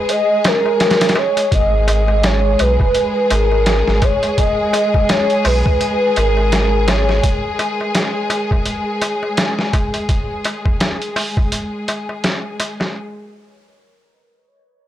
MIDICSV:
0, 0, Header, 1, 6, 480
1, 0, Start_track
1, 0, Key_signature, 5, "minor"
1, 0, Tempo, 714286
1, 1020, Time_signature, 4, 2, 24, 8
1, 9998, End_track
2, 0, Start_track
2, 0, Title_t, "Soft synth lead"
2, 0, Program_c, 0, 80
2, 0, Note_on_c, 0, 71, 95
2, 72, Note_on_c, 0, 75, 101
2, 82, Note_off_c, 0, 71, 0
2, 306, Note_off_c, 0, 75, 0
2, 320, Note_on_c, 0, 70, 108
2, 795, Note_on_c, 0, 73, 110
2, 805, Note_off_c, 0, 70, 0
2, 1036, Note_on_c, 0, 75, 115
2, 1046, Note_off_c, 0, 73, 0
2, 1515, Note_on_c, 0, 73, 103
2, 1526, Note_off_c, 0, 75, 0
2, 1754, Note_on_c, 0, 71, 102
2, 1764, Note_off_c, 0, 73, 0
2, 2230, Note_on_c, 0, 70, 93
2, 2240, Note_off_c, 0, 71, 0
2, 2715, Note_on_c, 0, 73, 103
2, 2725, Note_off_c, 0, 70, 0
2, 2955, Note_on_c, 0, 75, 103
2, 2965, Note_off_c, 0, 73, 0
2, 3432, Note_on_c, 0, 73, 90
2, 3442, Note_off_c, 0, 75, 0
2, 3671, Note_on_c, 0, 71, 94
2, 3681, Note_off_c, 0, 73, 0
2, 4153, Note_on_c, 0, 70, 94
2, 4164, Note_off_c, 0, 71, 0
2, 4628, Note_on_c, 0, 73, 87
2, 4638, Note_off_c, 0, 70, 0
2, 4864, Note_off_c, 0, 73, 0
2, 9998, End_track
3, 0, Start_track
3, 0, Title_t, "String section"
3, 0, Program_c, 1, 48
3, 0, Note_on_c, 1, 56, 89
3, 0, Note_on_c, 1, 68, 79
3, 1019, Note_off_c, 1, 56, 0
3, 1022, Note_off_c, 1, 68, 0
3, 1027, Note_on_c, 1, 56, 81
3, 1030, Note_on_c, 1, 68, 83
3, 8715, Note_off_c, 1, 56, 0
3, 8716, Note_off_c, 1, 68, 0
3, 9998, End_track
4, 0, Start_track
4, 0, Title_t, "Sub bass"
4, 0, Program_c, 2, 38
4, 1023, Note_on_c, 2, 32, 100
4, 1722, Note_off_c, 2, 32, 0
4, 1748, Note_on_c, 2, 35, 79
4, 1867, Note_off_c, 2, 35, 0
4, 2224, Note_on_c, 2, 32, 95
4, 2574, Note_off_c, 2, 32, 0
4, 2605, Note_on_c, 2, 32, 109
4, 2691, Note_off_c, 2, 32, 0
4, 3664, Note_on_c, 2, 35, 76
4, 3785, Note_off_c, 2, 35, 0
4, 4146, Note_on_c, 2, 32, 82
4, 4844, Note_off_c, 2, 32, 0
4, 9998, End_track
5, 0, Start_track
5, 0, Title_t, "Darbuka"
5, 63, Note_on_c, 9, 63, 40
5, 130, Note_off_c, 9, 63, 0
5, 301, Note_on_c, 9, 63, 96
5, 368, Note_off_c, 9, 63, 0
5, 441, Note_on_c, 9, 63, 51
5, 508, Note_off_c, 9, 63, 0
5, 540, Note_on_c, 9, 63, 36
5, 607, Note_off_c, 9, 63, 0
5, 776, Note_on_c, 9, 63, 97
5, 843, Note_off_c, 9, 63, 0
5, 922, Note_on_c, 9, 63, 54
5, 989, Note_off_c, 9, 63, 0
5, 1018, Note_on_c, 9, 63, 38
5, 1085, Note_off_c, 9, 63, 0
5, 1262, Note_on_c, 9, 63, 84
5, 1329, Note_off_c, 9, 63, 0
5, 1399, Note_on_c, 9, 63, 49
5, 1466, Note_off_c, 9, 63, 0
5, 1502, Note_on_c, 9, 63, 37
5, 1569, Note_off_c, 9, 63, 0
5, 1746, Note_on_c, 9, 63, 91
5, 1813, Note_off_c, 9, 63, 0
5, 1886, Note_on_c, 9, 63, 49
5, 1953, Note_off_c, 9, 63, 0
5, 1981, Note_on_c, 9, 63, 42
5, 2048, Note_off_c, 9, 63, 0
5, 2223, Note_on_c, 9, 63, 87
5, 2291, Note_off_c, 9, 63, 0
5, 2363, Note_on_c, 9, 63, 44
5, 2430, Note_off_c, 9, 63, 0
5, 2464, Note_on_c, 9, 63, 34
5, 2532, Note_off_c, 9, 63, 0
5, 2703, Note_on_c, 9, 63, 80
5, 2770, Note_off_c, 9, 63, 0
5, 2841, Note_on_c, 9, 63, 44
5, 2908, Note_off_c, 9, 63, 0
5, 2944, Note_on_c, 9, 63, 38
5, 3011, Note_off_c, 9, 63, 0
5, 3181, Note_on_c, 9, 63, 91
5, 3248, Note_off_c, 9, 63, 0
5, 3321, Note_on_c, 9, 63, 47
5, 3389, Note_off_c, 9, 63, 0
5, 3421, Note_on_c, 9, 63, 38
5, 3488, Note_off_c, 9, 63, 0
5, 3661, Note_on_c, 9, 63, 92
5, 3728, Note_off_c, 9, 63, 0
5, 3804, Note_on_c, 9, 63, 45
5, 3872, Note_off_c, 9, 63, 0
5, 3903, Note_on_c, 9, 63, 38
5, 3970, Note_off_c, 9, 63, 0
5, 4147, Note_on_c, 9, 63, 84
5, 4214, Note_off_c, 9, 63, 0
5, 4281, Note_on_c, 9, 63, 47
5, 4348, Note_off_c, 9, 63, 0
5, 4386, Note_on_c, 9, 63, 38
5, 4453, Note_off_c, 9, 63, 0
5, 4622, Note_on_c, 9, 63, 89
5, 4689, Note_off_c, 9, 63, 0
5, 4765, Note_on_c, 9, 63, 45
5, 4832, Note_off_c, 9, 63, 0
5, 4860, Note_on_c, 9, 63, 34
5, 4927, Note_off_c, 9, 63, 0
5, 5102, Note_on_c, 9, 63, 87
5, 5169, Note_off_c, 9, 63, 0
5, 5247, Note_on_c, 9, 63, 49
5, 5314, Note_off_c, 9, 63, 0
5, 5348, Note_on_c, 9, 63, 36
5, 5415, Note_off_c, 9, 63, 0
5, 5578, Note_on_c, 9, 63, 89
5, 5645, Note_off_c, 9, 63, 0
5, 5725, Note_on_c, 9, 63, 52
5, 5792, Note_off_c, 9, 63, 0
5, 5817, Note_on_c, 9, 63, 40
5, 5884, Note_off_c, 9, 63, 0
5, 6061, Note_on_c, 9, 63, 91
5, 6128, Note_off_c, 9, 63, 0
5, 6201, Note_on_c, 9, 63, 50
5, 6268, Note_off_c, 9, 63, 0
5, 6304, Note_on_c, 9, 63, 35
5, 6371, Note_off_c, 9, 63, 0
5, 6543, Note_on_c, 9, 63, 84
5, 6610, Note_off_c, 9, 63, 0
5, 6679, Note_on_c, 9, 63, 49
5, 6746, Note_off_c, 9, 63, 0
5, 6782, Note_on_c, 9, 63, 35
5, 6849, Note_off_c, 9, 63, 0
5, 7025, Note_on_c, 9, 63, 89
5, 7092, Note_off_c, 9, 63, 0
5, 7160, Note_on_c, 9, 63, 48
5, 7227, Note_off_c, 9, 63, 0
5, 7262, Note_on_c, 9, 63, 34
5, 7329, Note_off_c, 9, 63, 0
5, 7501, Note_on_c, 9, 63, 84
5, 7568, Note_off_c, 9, 63, 0
5, 7643, Note_on_c, 9, 63, 48
5, 7710, Note_off_c, 9, 63, 0
5, 7744, Note_on_c, 9, 63, 38
5, 7812, Note_off_c, 9, 63, 0
5, 7987, Note_on_c, 9, 63, 79
5, 8054, Note_off_c, 9, 63, 0
5, 8126, Note_on_c, 9, 63, 49
5, 8193, Note_off_c, 9, 63, 0
5, 8230, Note_on_c, 9, 63, 36
5, 8297, Note_off_c, 9, 63, 0
5, 8467, Note_on_c, 9, 63, 80
5, 8534, Note_off_c, 9, 63, 0
5, 8602, Note_on_c, 9, 63, 48
5, 8669, Note_off_c, 9, 63, 0
5, 9998, End_track
6, 0, Start_track
6, 0, Title_t, "Drums"
6, 60, Note_on_c, 9, 42, 67
6, 127, Note_off_c, 9, 42, 0
6, 299, Note_on_c, 9, 42, 80
6, 302, Note_on_c, 9, 38, 102
6, 366, Note_off_c, 9, 42, 0
6, 369, Note_off_c, 9, 38, 0
6, 539, Note_on_c, 9, 42, 64
6, 542, Note_on_c, 9, 38, 90
6, 606, Note_off_c, 9, 42, 0
6, 609, Note_off_c, 9, 38, 0
6, 609, Note_on_c, 9, 42, 64
6, 612, Note_on_c, 9, 38, 84
6, 676, Note_off_c, 9, 42, 0
6, 679, Note_on_c, 9, 42, 69
6, 680, Note_off_c, 9, 38, 0
6, 682, Note_on_c, 9, 38, 88
6, 732, Note_off_c, 9, 42, 0
6, 732, Note_on_c, 9, 42, 68
6, 736, Note_off_c, 9, 38, 0
6, 736, Note_on_c, 9, 38, 90
6, 799, Note_off_c, 9, 42, 0
6, 803, Note_off_c, 9, 38, 0
6, 921, Note_on_c, 9, 42, 61
6, 988, Note_off_c, 9, 42, 0
6, 1021, Note_on_c, 9, 36, 101
6, 1021, Note_on_c, 9, 42, 75
6, 1088, Note_off_c, 9, 36, 0
6, 1088, Note_off_c, 9, 42, 0
6, 1262, Note_on_c, 9, 42, 66
6, 1329, Note_off_c, 9, 42, 0
6, 1502, Note_on_c, 9, 42, 84
6, 1505, Note_on_c, 9, 38, 109
6, 1569, Note_off_c, 9, 42, 0
6, 1572, Note_off_c, 9, 38, 0
6, 1742, Note_on_c, 9, 42, 67
6, 1809, Note_off_c, 9, 42, 0
6, 1880, Note_on_c, 9, 36, 88
6, 1947, Note_off_c, 9, 36, 0
6, 1980, Note_on_c, 9, 42, 82
6, 2047, Note_off_c, 9, 42, 0
6, 2221, Note_on_c, 9, 42, 65
6, 2288, Note_off_c, 9, 42, 0
6, 2460, Note_on_c, 9, 42, 79
6, 2463, Note_on_c, 9, 38, 101
6, 2527, Note_off_c, 9, 42, 0
6, 2531, Note_off_c, 9, 38, 0
6, 2604, Note_on_c, 9, 38, 37
6, 2672, Note_off_c, 9, 38, 0
6, 2700, Note_on_c, 9, 42, 63
6, 2701, Note_on_c, 9, 36, 93
6, 2768, Note_off_c, 9, 42, 0
6, 2769, Note_off_c, 9, 36, 0
6, 2841, Note_on_c, 9, 42, 42
6, 2908, Note_off_c, 9, 42, 0
6, 2942, Note_on_c, 9, 36, 95
6, 2942, Note_on_c, 9, 42, 76
6, 3010, Note_off_c, 9, 36, 0
6, 3010, Note_off_c, 9, 42, 0
6, 3184, Note_on_c, 9, 42, 65
6, 3251, Note_off_c, 9, 42, 0
6, 3322, Note_on_c, 9, 36, 93
6, 3389, Note_off_c, 9, 36, 0
6, 3421, Note_on_c, 9, 42, 79
6, 3425, Note_on_c, 9, 38, 110
6, 3488, Note_off_c, 9, 42, 0
6, 3492, Note_off_c, 9, 38, 0
6, 3561, Note_on_c, 9, 42, 43
6, 3628, Note_off_c, 9, 42, 0
6, 3662, Note_on_c, 9, 46, 75
6, 3729, Note_off_c, 9, 46, 0
6, 3802, Note_on_c, 9, 36, 88
6, 3869, Note_off_c, 9, 36, 0
6, 3902, Note_on_c, 9, 42, 83
6, 3969, Note_off_c, 9, 42, 0
6, 4142, Note_on_c, 9, 42, 62
6, 4209, Note_off_c, 9, 42, 0
6, 4383, Note_on_c, 9, 42, 73
6, 4386, Note_on_c, 9, 38, 104
6, 4450, Note_off_c, 9, 42, 0
6, 4453, Note_off_c, 9, 38, 0
6, 4621, Note_on_c, 9, 42, 75
6, 4625, Note_on_c, 9, 38, 104
6, 4688, Note_off_c, 9, 42, 0
6, 4692, Note_off_c, 9, 38, 0
6, 4765, Note_on_c, 9, 38, 31
6, 4832, Note_off_c, 9, 38, 0
6, 4862, Note_on_c, 9, 36, 100
6, 4862, Note_on_c, 9, 42, 79
6, 4929, Note_off_c, 9, 36, 0
6, 4929, Note_off_c, 9, 42, 0
6, 5102, Note_on_c, 9, 42, 61
6, 5169, Note_off_c, 9, 42, 0
6, 5340, Note_on_c, 9, 42, 75
6, 5343, Note_on_c, 9, 38, 104
6, 5407, Note_off_c, 9, 42, 0
6, 5410, Note_off_c, 9, 38, 0
6, 5579, Note_on_c, 9, 42, 63
6, 5647, Note_off_c, 9, 42, 0
6, 5719, Note_on_c, 9, 36, 88
6, 5786, Note_off_c, 9, 36, 0
6, 5816, Note_on_c, 9, 42, 79
6, 5884, Note_off_c, 9, 42, 0
6, 6058, Note_on_c, 9, 42, 58
6, 6125, Note_off_c, 9, 42, 0
6, 6299, Note_on_c, 9, 42, 77
6, 6302, Note_on_c, 9, 38, 100
6, 6366, Note_off_c, 9, 42, 0
6, 6369, Note_off_c, 9, 38, 0
6, 6442, Note_on_c, 9, 38, 36
6, 6510, Note_off_c, 9, 38, 0
6, 6541, Note_on_c, 9, 36, 90
6, 6541, Note_on_c, 9, 42, 67
6, 6608, Note_off_c, 9, 36, 0
6, 6609, Note_off_c, 9, 42, 0
6, 6678, Note_on_c, 9, 42, 38
6, 6745, Note_off_c, 9, 42, 0
6, 6780, Note_on_c, 9, 36, 91
6, 6780, Note_on_c, 9, 42, 73
6, 6847, Note_off_c, 9, 36, 0
6, 6847, Note_off_c, 9, 42, 0
6, 7019, Note_on_c, 9, 42, 61
6, 7086, Note_off_c, 9, 42, 0
6, 7161, Note_on_c, 9, 36, 80
6, 7228, Note_off_c, 9, 36, 0
6, 7261, Note_on_c, 9, 42, 76
6, 7264, Note_on_c, 9, 38, 100
6, 7328, Note_off_c, 9, 42, 0
6, 7331, Note_off_c, 9, 38, 0
6, 7403, Note_on_c, 9, 42, 36
6, 7470, Note_off_c, 9, 42, 0
6, 7503, Note_on_c, 9, 46, 68
6, 7570, Note_off_c, 9, 46, 0
6, 7641, Note_on_c, 9, 36, 89
6, 7708, Note_off_c, 9, 36, 0
6, 7741, Note_on_c, 9, 42, 77
6, 7809, Note_off_c, 9, 42, 0
6, 7984, Note_on_c, 9, 42, 54
6, 8051, Note_off_c, 9, 42, 0
6, 8224, Note_on_c, 9, 42, 67
6, 8227, Note_on_c, 9, 38, 83
6, 8291, Note_off_c, 9, 42, 0
6, 8294, Note_off_c, 9, 38, 0
6, 8465, Note_on_c, 9, 42, 63
6, 8532, Note_off_c, 9, 42, 0
6, 8606, Note_on_c, 9, 38, 48
6, 8674, Note_off_c, 9, 38, 0
6, 9998, End_track
0, 0, End_of_file